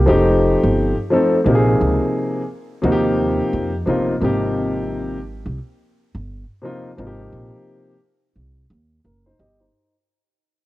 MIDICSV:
0, 0, Header, 1, 3, 480
1, 0, Start_track
1, 0, Key_signature, -4, "major"
1, 0, Tempo, 689655
1, 1018, Time_signature, 4, 2, 24, 8
1, 7412, End_track
2, 0, Start_track
2, 0, Title_t, "Grand piano"
2, 0, Program_c, 0, 0
2, 0, Note_on_c, 0, 58, 50
2, 41, Note_on_c, 0, 53, 84
2, 46, Note_on_c, 0, 57, 78
2, 54, Note_on_c, 0, 60, 80
2, 59, Note_on_c, 0, 63, 87
2, 63, Note_on_c, 0, 67, 98
2, 188, Note_off_c, 0, 58, 0
2, 646, Note_off_c, 0, 53, 0
2, 648, Note_off_c, 0, 57, 0
2, 652, Note_off_c, 0, 60, 0
2, 655, Note_off_c, 0, 63, 0
2, 657, Note_off_c, 0, 67, 0
2, 766, Note_on_c, 0, 53, 81
2, 768, Note_on_c, 0, 57, 76
2, 776, Note_on_c, 0, 60, 80
2, 783, Note_on_c, 0, 63, 74
2, 787, Note_on_c, 0, 69, 90
2, 949, Note_off_c, 0, 53, 0
2, 950, Note_off_c, 0, 57, 0
2, 954, Note_off_c, 0, 60, 0
2, 957, Note_off_c, 0, 63, 0
2, 960, Note_off_c, 0, 69, 0
2, 1004, Note_on_c, 0, 48, 90
2, 1011, Note_on_c, 0, 53, 72
2, 1016, Note_on_c, 0, 58, 79
2, 1023, Note_on_c, 0, 63, 77
2, 1032, Note_on_c, 0, 67, 70
2, 1077, Note_on_c, 0, 68, 88
2, 1079, Note_off_c, 0, 67, 0
2, 1669, Note_off_c, 0, 48, 0
2, 1672, Note_off_c, 0, 53, 0
2, 1675, Note_off_c, 0, 58, 0
2, 1678, Note_off_c, 0, 63, 0
2, 1705, Note_off_c, 0, 68, 0
2, 1962, Note_on_c, 0, 48, 86
2, 1968, Note_on_c, 0, 53, 83
2, 1975, Note_on_c, 0, 58, 83
2, 1980, Note_on_c, 0, 63, 86
2, 1986, Note_on_c, 0, 66, 82
2, 2032, Note_on_c, 0, 67, 103
2, 2037, Note_off_c, 0, 66, 0
2, 2566, Note_off_c, 0, 48, 0
2, 2569, Note_off_c, 0, 53, 0
2, 2573, Note_off_c, 0, 58, 0
2, 2575, Note_off_c, 0, 63, 0
2, 2601, Note_off_c, 0, 67, 0
2, 2685, Note_on_c, 0, 48, 87
2, 2689, Note_on_c, 0, 53, 70
2, 2698, Note_on_c, 0, 58, 76
2, 2703, Note_on_c, 0, 63, 77
2, 2708, Note_on_c, 0, 65, 85
2, 2869, Note_off_c, 0, 48, 0
2, 2870, Note_off_c, 0, 53, 0
2, 2875, Note_off_c, 0, 58, 0
2, 2878, Note_off_c, 0, 63, 0
2, 2880, Note_off_c, 0, 65, 0
2, 2927, Note_on_c, 0, 48, 87
2, 2933, Note_on_c, 0, 53, 76
2, 2938, Note_on_c, 0, 58, 76
2, 2947, Note_on_c, 0, 63, 73
2, 2954, Note_on_c, 0, 67, 93
2, 3590, Note_off_c, 0, 48, 0
2, 3593, Note_off_c, 0, 53, 0
2, 3595, Note_off_c, 0, 58, 0
2, 3600, Note_off_c, 0, 63, 0
2, 3603, Note_off_c, 0, 67, 0
2, 4607, Note_on_c, 0, 48, 83
2, 4614, Note_on_c, 0, 53, 71
2, 4617, Note_on_c, 0, 58, 70
2, 4626, Note_on_c, 0, 63, 75
2, 4632, Note_on_c, 0, 65, 93
2, 4789, Note_off_c, 0, 48, 0
2, 4793, Note_off_c, 0, 53, 0
2, 4794, Note_off_c, 0, 58, 0
2, 4799, Note_off_c, 0, 63, 0
2, 4802, Note_off_c, 0, 65, 0
2, 4850, Note_on_c, 0, 48, 74
2, 4854, Note_on_c, 0, 53, 72
2, 4860, Note_on_c, 0, 58, 77
2, 4868, Note_on_c, 0, 63, 70
2, 4873, Note_on_c, 0, 65, 69
2, 4919, Note_on_c, 0, 67, 84
2, 4920, Note_off_c, 0, 65, 0
2, 5511, Note_off_c, 0, 48, 0
2, 5513, Note_off_c, 0, 53, 0
2, 5516, Note_off_c, 0, 58, 0
2, 5520, Note_off_c, 0, 63, 0
2, 5546, Note_off_c, 0, 67, 0
2, 6296, Note_on_c, 0, 70, 49
2, 6435, Note_off_c, 0, 70, 0
2, 6446, Note_on_c, 0, 72, 59
2, 6451, Note_on_c, 0, 63, 53
2, 6534, Note_off_c, 0, 72, 0
2, 6537, Note_off_c, 0, 63, 0
2, 6539, Note_on_c, 0, 75, 61
2, 6543, Note_on_c, 0, 67, 53
2, 6677, Note_off_c, 0, 75, 0
2, 6679, Note_off_c, 0, 67, 0
2, 6682, Note_on_c, 0, 72, 46
2, 6686, Note_on_c, 0, 63, 38
2, 6911, Note_off_c, 0, 72, 0
2, 6913, Note_off_c, 0, 63, 0
2, 7412, End_track
3, 0, Start_track
3, 0, Title_t, "Upright bass"
3, 0, Program_c, 1, 32
3, 53, Note_on_c, 1, 29, 87
3, 368, Note_off_c, 1, 29, 0
3, 441, Note_on_c, 1, 31, 86
3, 637, Note_off_c, 1, 31, 0
3, 1015, Note_on_c, 1, 34, 89
3, 1211, Note_off_c, 1, 34, 0
3, 1259, Note_on_c, 1, 37, 81
3, 1376, Note_off_c, 1, 37, 0
3, 1974, Note_on_c, 1, 39, 97
3, 2365, Note_off_c, 1, 39, 0
3, 2458, Note_on_c, 1, 41, 83
3, 2653, Note_off_c, 1, 41, 0
3, 2693, Note_on_c, 1, 31, 74
3, 2890, Note_off_c, 1, 31, 0
3, 2934, Note_on_c, 1, 32, 80
3, 3773, Note_off_c, 1, 32, 0
3, 3798, Note_on_c, 1, 36, 67
3, 3877, Note_off_c, 1, 36, 0
3, 4278, Note_on_c, 1, 31, 73
3, 4475, Note_off_c, 1, 31, 0
3, 4860, Note_on_c, 1, 32, 89
3, 5054, Note_off_c, 1, 32, 0
3, 5098, Note_on_c, 1, 34, 73
3, 5216, Note_off_c, 1, 34, 0
3, 5815, Note_on_c, 1, 36, 67
3, 6011, Note_off_c, 1, 36, 0
3, 6055, Note_on_c, 1, 39, 83
3, 6251, Note_off_c, 1, 39, 0
3, 6295, Note_on_c, 1, 30, 70
3, 6491, Note_off_c, 1, 30, 0
3, 6537, Note_on_c, 1, 31, 81
3, 6732, Note_off_c, 1, 31, 0
3, 7412, End_track
0, 0, End_of_file